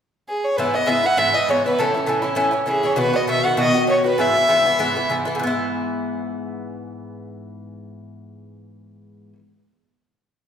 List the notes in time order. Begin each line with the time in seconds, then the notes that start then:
0.28 G#4
0.44 C#5
0.57 G#2 E3 B3 E4 B4
0.74 E3 B3 E4 D#5
0.86 G#2 E3 B3 E4 E5
1.04 E3 B3 E4 F#5
1.17 G#2 E3 B3 E4 E5
1.34 E3 B3 E4 D#5
1.48 G#2 E3 B3 E4 C#5
1.66 E3 B3 E4 B4
1.79 A2 E3 C#4 E4 A4
1.94 E3 C#4 E4
2.06 A2 E3 C#4 E4
2.22 E3 C#4 E4
2.35 A2 E3 C#4 E4
2.51 E3 C#4 E4
2.66 A2 E3 C#4 E4 G#4
2.83 E3 C#4 E4 C#5
2.96 B2 D#3 B3 F#4 B4
3.13 D#3 B3 F#4 D#5
3.27 B2 D#3 B3 F#4 E5
3.44 D#3 B3 F#4 F#5
3.57 B2 D#3 B3 F#4 D#5
3.74 D#3 B3 F#4
3.87 B2 D#3 B3 F#4 C#5
4.04 D#3 B3 F#4 B4
4.18 G#2 E3 B3 E4 E5
4.34 E3 B3 E4
4.48 G#2 E3 B3 E4
4.65 E3 B3 E4
4.79 G#2 E3 B3 E4
4.96 E3 B3 E4
5.09 G#2 E3 B3 E4
5.25 E3 B3 E4
5.35 G#2
5.39 E3 B3
5.47 E4